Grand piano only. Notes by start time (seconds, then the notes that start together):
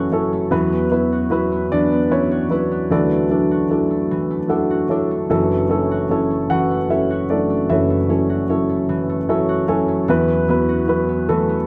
Already playing: F#1 F#2 F#3 C#4 E4 A4 C#5
0.11 F#3 C#4 E4 A4
0.51 E2 F#3 B3 E4 B4
0.90 F#3 B3 E4 B4
1.30 F#3 B3 E4 B4
1.72 D4 D5
2.10 F#3 B3 C#4 E4 B4 C#5
2.49 F#3 B3 E4 B4
2.90 D2 D3 F#3 D4 E4 F#4 A4 D5
3.29 F#3 D4 E4 A4
3.70 F#3 D4 E4 A4
4.48 F#3 D4 E4 A4 F#5
4.89 F#3 D4 E4 A4 C#5
5.30 F#1 F#2 F#3 C#4 E4 A4
5.69 F#3 C#4 E4 A4
6.10 F#3 C#4 E4 A4
6.50 F#4 F#5
6.89 F#3 C#4 E4 A4 E5
7.30 F#3 A3 D4 E4 A4 D5
7.70 F#1 F#2 E4 A4 C#5 E5
8.09 F#3 C#4 E4 A4
8.49 F#3 C#4 E4 A4
9.29 F#3 C#4 E4 A4 E5
9.67 F#3 C#4 E4 A4 G#5
10.08 E2 F#3 B3 E4 B4
10.49 F#3 B3 E4 B4
10.88 F#3 B3 E4 B4
11.29 A3 F#4 A4